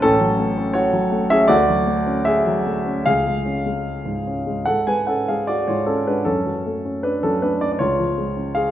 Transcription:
grand piano
0.02 A1 C#4 A4
0.21 F#3
0.39 A3
0.57 C#4
0.73 F#4 C#5
0.93 F#3
1.12 A3
1.30 C#4 G#4 E5
1.48 D2 F#4 D5
1.69 F#3
1.87 A3
2.06 C#4
2.25 G#4 E5
2.46 F#3
2.66 A3
2.86 C#4
3.06 C#2 G#4 F5
3.26 G#3
3.46 C#4
3.66 G#3
4.05 G#2
4.27 C#4
4.46 G#3
4.66 G#2 A4 F#5
4.87 G#3 B4 G#5
5.07 C#4 A4 F#5
5.28 G#3 G#4 F5
5.47 F#4 D5
5.68 G#2 F4 C#5
5.86 C#4 A4
6.07 G#3 D4 B4
6.25 F#2 C#4 A4
6.46 F#3
6.66 A3
6.85 C#4
7.03 D4 B4
7.23 F#3 C#4 A4
7.42 A3 D4 B4
7.61 C#4 D5
7.72 D5
7.79 C#2 F4 C#5
7.99 F3
8.18 G#3
8.37 C#4
8.55 G#4 F5

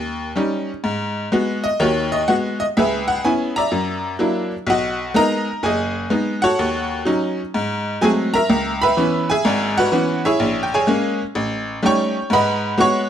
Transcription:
honky-tonk piano
Already playing: D#2
0.36 G3 C#4 D#4
0.84 G#2
1.32 G#3 B3 F#4
1.64 D#5
1.80 D#2 D#3 F#4 C#5
2.12 D#5
2.28 G#3 B3 F#4 F#5
2.60 D#5
2.77 C#2 G#4 B4 E5
3.08 F#5
3.24 B3 C#4 E4 G#5
3.56 D5 E5 A#5
3.71 F#2
4.19 F#3 A#3 D4 E4
4.67 B1 F#4 D#5 F#5
5.14 G#3 B3 D#4 A#4 D#5 A#5
5.63 F#1 G#4 D#5 G#5
6.10 G#3 B3 D#4
6.42 F#4 A4 C#5 F#5
6.59 D#2
7.05 F#3 C#4 D#4
7.54 G#2
8.01 F#3 G#3 A3 C4 G#4 G#5
8.34 A#4 E5 A#5
8.49 C#2
8.82 B4 E5 B5
8.97 E3 B3 C#4
9.30 G#4 E5 G#5
9.45 G#1 G#2
9.78 F#4 B4 F#5
9.92 E3 B3 C#4
10.25 E4 G#4 C#5 E5
10.40 A#1
10.63 G5
10.74 G#4 C#5 G#5
10.87 G#3 A#3 C#4
11.35 A1
11.83 G3 A3 C#4 D#4 C#5 G5 C#6
12.30 G#2 B4 D#5 F#5 B5
12.78 G#3 B3 F#4 C#5 F#5 C#6

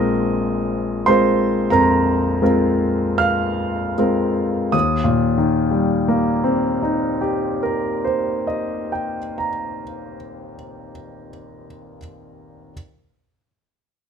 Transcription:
grand piano
Already playing: A#1 G#3 C4 F4 A#4 D#5 D#6
1.06 G#3 C4 F4 A#4 C5 C6
1.70 F2 A#4 A#5
2.42 G#3 C4 F4 A#4
3.18 F5 F6
3.98 G#3 C4 F4 A#4
4.72 D#2 D#6
5.04 A#2
5.38 D#3
5.71 G3
6.08 A#3
6.44 C4
6.82 D#4
7.21 G4
7.63 A#4
8.04 C5
8.47 D#5
8.92 G5
9.38 A#5

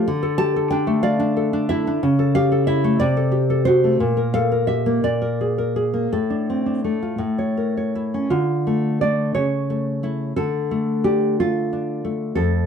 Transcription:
nylon-string guitar
0.08 D3
0.23 A4
0.38 G4 A5
0.56 A4
0.70 D4 G5
0.87 A3
1.03 D5 F5
1.20 D4
1.37 A4
1.53 D4
1.69 E4 E5
1.87 D4
2.03 C#3
2.19 A4
2.35 G4 F5
2.52 A4
2.67 E4 E5
2.84 A3
3.00 C3 D5
3.17 A4
3.32 G4
3.50 A4
3.65 F#4 C5
3.84 A3
4.00 A#2
4.17 A#4
4.34 A4 F5
4.52 A#4
4.67 G4 E5
4.86 A#3
5.04 A#2 D5
5.22 A#4
5.41 G#4
5.58 A#4
5.76 G#4
5.94 A#3
6.12 A2 A4
6.30 D4
6.50 C4
6.66 D4
6.84 A3
7.03 F4
7.18 A2
7.39 C#5
7.57 A#4
7.77 C#5
7.95 E4
8.14 C#4
8.30 D3 F4
8.67 A3
9.01 A3 D4 D5
9.35 C#3 C#5
9.70 A3
10.03 A3 E4
10.36 D3 A4
10.71 A3
11.04 D4 G4
11.40 A3 F4
11.73 D4
12.05 A3
12.35 F2 A4

